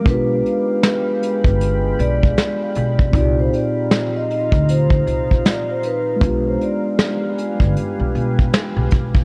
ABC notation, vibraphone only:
X:1
M:4/4
L:1/16
Q:"Swing 16ths" 1/4=78
K:Gphr
V:1 name="Vibraphone"
=B8- B2 d6 | d c d3 e e2 c4 d c =B2- | =B c d6 z8 |]